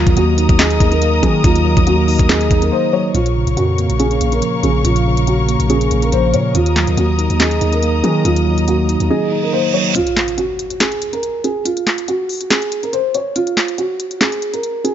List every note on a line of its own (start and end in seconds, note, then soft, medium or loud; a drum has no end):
0.00 0.80 D#3 medium
0.00 1.02 F#3 medium
0.00 0.14 F4 loud
0.00 3.11 A#4 medium
0.00 3.11 D#5 medium
0.00 3.11 A#5 medium
0.00 3.11 D#6 medium
0.07 0.16 D#2 loud
0.07 kick medium
0.07 closed hi-hat medium
0.16 0.48 D#2 loud
0.16 1.01 A#3 medium
0.16 0.57 F#4 medium
0.16 closed hi-hat medium
0.38 0.79 D#4 medium
0.38 closed hi-hat medium
0.49 0.79 D#2 loud
0.49 kick loud
0.49 closed hi-hat medium
0.59 0.90 G#4 medium
0.59 1.66 D#5 loud
0.59 snare loud
0.59 clap loud
0.59 closed hi-hat medium
0.70 closed hi-hat medium
0.80 1.21 D#2 loud
0.80 1.87 D#4 medium
0.80 kick medium
0.80 closed hi-hat medium
0.92 1.21 A#4 medium
0.92 closed hi-hat medium
1.02 1.86 A#3 medium
1.02 closed hi-hat medium
1.23 1.43 D#3 loud
1.23 1.64 F#3 medium
1.23 1.42 G#4 medium
1.23 kick loud
1.23 closed hi-hat medium
1.44 1.75 D#2 loud
1.44 2.51 D#3 loud
1.44 1.84 F4 loud
1.44 kick loud
1.44 closed hi-hat loud
1.55 closed hi-hat medium
1.65 2.72 F#3 medium
1.77 2.18 D#2 loud
1.77 kick loud
1.77 closed hi-hat medium
1.87 2.70 A#3 loud
1.87 2.27 F#4 medium
1.87 closed hi-hat medium
2.08 2.50 D#4 medium
2.08 open hi-hat medium
2.19 2.49 D#2 loud
2.19 kick loud
2.19 closed hi-hat medium
2.29 2.60 G#4 medium
2.29 3.14 D#5 loud
2.29 snare loud
2.29 clap loud
2.29 closed hi-hat medium
2.41 closed hi-hat medium
2.51 2.71 D#2 loud
2.51 3.15 D#4 medium
2.51 kick medium
2.51 closed hi-hat medium
2.62 2.71 A#4 medium
2.62 closed hi-hat medium
2.72 3.14 A#3 medium
2.72 2.91 C5 loud
2.93 3.15 F#3 medium
2.93 3.12 C#5 medium
3.14 3.46 A#1 loud
3.14 4.21 A#2 medium
3.14 3.54 F4 loud
3.14 9.91 A#4 medium
3.14 6.52 C#5 medium
3.14 6.52 F5 medium
3.14 6.52 C#6 medium
3.14 closed hi-hat medium
3.26 closed hi-hat medium
3.36 4.42 C#3 medium
3.47 3.57 A#1 loud
3.47 closed hi-hat medium
3.57 3.88 F2 loud
3.57 3.97 F#4 medium
3.57 closed hi-hat medium
3.78 4.20 A#3 medium
3.78 closed hi-hat medium
3.90 4.20 A#1 loud
3.90 closed hi-hat medium
4.00 5.06 C#4 loud
4.00 4.30 G#4 medium
4.00 closed hi-hat medium
4.11 closed hi-hat soft
4.21 4.41 A#1 loud
4.21 5.27 A#3 medium
4.21 closed hi-hat medium
4.32 4.62 A#4 medium
4.32 closed hi-hat medium
4.42 5.49 F3 medium
4.42 closed hi-hat medium
4.63 4.84 A#1 loud
4.63 5.05 C#3 medium
4.63 4.83 G#4 medium
4.63 closed hi-hat medium
4.84 5.57 A#1 loud
4.84 5.91 A#2 medium
4.84 5.24 F4 medium
4.84 closed hi-hat loud
4.96 closed hi-hat medium
5.06 6.12 C#3 medium
5.17 closed hi-hat medium
5.27 5.67 F#4 medium
5.27 closed hi-hat medium
5.49 5.90 A#3 medium
5.49 closed hi-hat medium
5.60 5.90 A#1 loud
5.60 closed hi-hat medium
5.70 6.55 C#4 loud
5.70 6.00 G#4 medium
5.70 closed hi-hat medium
5.81 closed hi-hat soft
5.91 6.11 A#1 loud
5.91 6.55 A#3 medium
5.91 closed hi-hat medium
6.02 6.12 A#4 medium
6.02 closed hi-hat medium
6.12 6.35 A#1 loud
6.12 6.55 F3 medium
6.12 6.32 C5 medium
6.12 closed hi-hat medium
6.34 6.54 A#2 loud
6.34 6.55 C#3 medium
6.34 6.53 C#5 medium
6.34 closed hi-hat medium
6.55 6.86 D#2 loud
6.55 7.61 D#3 medium
6.55 6.95 F4 loud
6.55 9.92 D#5 medium
6.55 9.92 A#5 medium
6.55 9.92 D#6 medium
6.55 closed hi-hat loud
6.66 closed hi-hat medium
6.76 7.83 F#3 medium
6.76 snare medium
6.76 clap medium
6.87 6.97 D#2 loud
6.87 closed hi-hat medium
6.97 7.29 D#2 loud
6.97 7.82 A#3 medium
6.97 7.38 F#4 medium
6.97 closed hi-hat medium
7.19 7.60 D#4 medium
7.19 closed hi-hat medium
7.30 7.60 D#2 loud
7.30 closed hi-hat medium
7.40 7.71 G#4 medium
7.40 8.46 D#5 loud
7.40 snare loud
7.40 clap medium
7.40 closed hi-hat medium
7.51 closed hi-hat soft
7.61 8.02 D#2 loud
7.61 8.68 D#4 medium
7.61 closed hi-hat medium
7.72 8.02 A#4 medium
7.72 closed hi-hat medium
7.83 8.67 A#3 medium
7.83 closed hi-hat medium
8.03 8.24 D#3 loud
8.03 8.45 F#3 medium
8.03 8.23 G#4 medium
8.03 closed hi-hat medium
8.25 8.97 D#2 loud
8.25 9.32 D#3 medium
8.25 8.65 F4 medium
8.25 closed hi-hat loud
8.36 closed hi-hat medium
8.46 9.53 F#3 medium
8.58 closed hi-hat medium
8.68 9.52 A#3 medium
8.68 9.08 F#4 medium
8.68 closed hi-hat medium
8.89 9.31 D#4 medium
8.89 closed hi-hat medium
9.00 9.10 D#2 loud
9.00 closed hi-hat medium
9.10 9.41 G#4 medium
9.10 9.95 D#5 loud
9.10 reverse cymbal medium
9.32 9.96 D#4 medium
9.43 9.52 A#4 medium
9.53 9.95 A#3 medium
9.53 9.72 C5 medium
9.74 9.96 F#3 medium
9.74 9.93 C#5 medium
9.95 10.35 F4 loud
9.95 closed hi-hat loud
9.95 impact medium
10.07 closed hi-hat medium
10.17 snare medium
10.17 clap medium
10.28 closed hi-hat medium
10.38 10.78 F#4 medium
10.38 closed hi-hat medium
10.59 closed hi-hat medium
10.70 closed hi-hat medium
10.80 11.11 G#4 medium
10.80 snare loud
10.80 clap medium
10.80 closed hi-hat medium
10.92 closed hi-hat medium
11.02 closed hi-hat medium
11.13 11.42 A#4 medium
11.13 closed hi-hat medium
11.23 closed hi-hat medium
11.44 11.63 G#4 medium
11.44 closed hi-hat medium
11.65 12.05 F4 medium
11.65 closed hi-hat loud
11.77 closed hi-hat medium
11.87 snare medium
11.87 clap medium
11.98 closed hi-hat medium
12.08 12.48 F#4 medium
12.08 closed hi-hat medium
12.29 open hi-hat medium
12.41 closed hi-hat medium
12.50 12.81 G#4 medium
12.50 snare loud
12.50 clap loud
12.50 closed hi-hat medium
12.62 closed hi-hat medium
12.72 closed hi-hat medium
12.83 12.92 A#4 medium
12.83 closed hi-hat medium
12.93 13.12 C5 medium
12.93 closed hi-hat medium
13.14 13.34 C#5 medium
13.14 closed hi-hat medium
13.36 13.76 F4 loud
13.36 closed hi-hat loud
13.47 closed hi-hat medium
13.57 snare medium
13.57 clap medium
13.68 closed hi-hat medium
13.78 14.18 F#4 medium
13.78 closed hi-hat medium
14.00 closed hi-hat medium
14.11 closed hi-hat medium
14.21 14.51 G#4 medium
14.21 snare loud
14.21 clap loud
14.21 closed hi-hat medium
14.32 closed hi-hat medium
14.42 closed hi-hat medium
14.54 14.83 A#4 medium
14.54 closed hi-hat medium
14.63 closed hi-hat medium
14.84 14.95 G#4 medium
14.84 closed hi-hat medium